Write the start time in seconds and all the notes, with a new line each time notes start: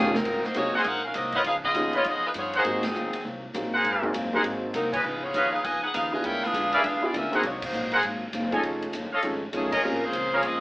Already playing: F1 D#3 F3 G3 A#3 C#4 F4 G4 G#4 A#4 C#5 G5
0.14 F#3 C4 D#4 A#4, snare
0.24 G#1 G#2 F#3 A#3 C4, kick, crash
0.44 A#3 D#4 F#4 C5, muted upright bass stroke, snare
0.54 C2 G#2 F#3 A#3 C4 D#4 F#4 G#4 C#5, hi-hat pedal, ride
0.65 G#1
0.74 F#1 C4 F#4 G#4 A#4 C5 D#5 F#5
0.84 A#1 G#2 F#3 A#3 C4 D#4 A#4 C5 F#5, ride
1.05 C#4 F#4 A#4 F5
1.14 C2 G#2 F#3 A#3 C4 F#4 A#4 D#5, hi-hat pedal, ride
1.32 D#4 F4 A#4 B4 C5 C#5 D#5 F#5, kick, ride
1.44 C#2 C#3 F3 B3 D#4 G#4 B4 F5, ride
1.64 B3 F4 G#4 D#5, kick
1.74 D#2 C#3 F3 B3 C#4 D#4 F4 G#4, hi-hat pedal, ride
1.93 B3 F4 G#4 B4 C#5 D#5, ride
2.03 F2 C#3 F3 B3 D#4 F4 D#5, ride
2.08 G#4
2.26 G#3 D#4 F4 B4
2.34 G2 C#3 F3 B3 D#4, hi-hat pedal, ride
2.38 B3 F4 G#4 C#5
2.53 G#4 A#4 C5 F#5, ride
2.57 A#3 D#4 F#4
2.64 G#2 F#3 A#3 C4 D#4 F#4 G#4, ride
2.83 F#3 C4 D#4 G#4, snare, ride
2.94 D#2 G#2 F#3 A#3 C4, hi-hat pedal
3.13 ride
3.24 C2 G#2 F#3 A#3 C4
3.54 A#1 G#2 F#3 A#3 C4 D#4 F#4 G#4, hi-hat pedal, ride
3.73 G#4 A#4 C5 F#5
3.83 G#1 G#2 F#3 A#3 C4, ride
4.02 A#3 C4 D#4 F#4 G#4, kick
4.13 F#1 G#2 F#3 A#3 C4, hi-hat pedal, ride
4.33 A#3 C4 D#4 F#4 G#4 A#4 C5 F#5, kick
4.43 G#1 G#2 F#3 A#3 C4, ride
4.73 C2 G#2 F#3 A#3 C4 D#4 A#4, hi-hat pedal, ride
4.93 G#3 D#4 F4 B4 C#5 D#5 G#5, kick, crash
5.03 C#2 C#3 F3 B3 D#4
5.23 B3 F4 G#4 C#5
5.32 D#2 C#3 F3 B3 D#4 B4 C#5 D#5 F5, hi-hat pedal, ride
5.52 D#4 G#4 B4 F5
5.63 F2 C#3 F3 B3 D#4 F4 B4 D#5 G#5, ride
5.83 D#4 G#4 B4 F#5, muted upright bass stroke
5.94 D#2 C#3 F3 B3 D#4 G#4 B4 F5, hi-hat pedal, ride
6.12 B3 D4 E4 F4 G#4 B4 D#5 G#5
6.22 D2 D3 G#3 B3 E4 F4 A#4 C#5 G5, ride
6.43 D4 G#4 B4 F5, snare
6.52 F2 D3 G#3 B3 F4, hi-hat pedal, ride
6.73 C#4 G4 G#4 A#4 B4 D5 E5 F5, ride
6.82 E2 D3 G#3 B3 D4 F4 G#4 B4 F5, ride
7.02 B3 D4 E4 F4 G#4 D5, muted upright bass stroke
7.13 D2 D3 G#3 B3 C#4 F4 G4 A#4 E5, hi-hat pedal, ride
7.32 A#3 C4 D#4 F#4 G#4 A4 A#4 C5 D#5 F#5, muted upright bass stroke, ride
7.42 C2 G#2 F#3 A#3 C4, ride
7.46 A#3 D#4 F#4 C#5
7.62 A#3 D#4 F#4 C5, kick, crash
7.73 A#1 G#2 F#3 A#3 C4, hi-hat pedal
7.92 G#4 A#4 C5 F#5, ride
8.02 G#1 G#2 F#3 A#3 C4, ride
8.32 F#1 G#2 F#3 A#3 C4, hi-hat pedal, ride
8.51 A3 C#4 D#4 F4 G#4 A4 C#5 D#5 G#5, kick, ride
8.63 F1 F2 D#3 A3 C#4, ride
8.82 ride
8.92 F#1 F2 D#3 A3 C#4, hi-hat pedal, ride
9.12 A4 C#5 D#5 F5, muted upright bass stroke
9.22 G#1 F2 D#3 A3 C#4 D#4 F4 G#4, ride
9.52 B1 F2 D#3 A3 C#4 D#4 F4 G#4, hi-hat pedal, ride
9.72 G#3 C#4 F4 G#4 A#4 C#5 D#5, kick, crash
9.83 A#1 A#2 F3 G#3 A#3 C4 C#4 F4 G#4
9.94 G#1
10.03 F1 A#3 F4 G#4 C5
10.12 C#2 A#2 F3 G#3 C#4, hi-hat pedal, ride
10.32 A#3 F4 G#4 A#4 C#5 F5
10.42 F2 A#2 F3 G#3 C4 C#4 F4 G#4 D#5, ride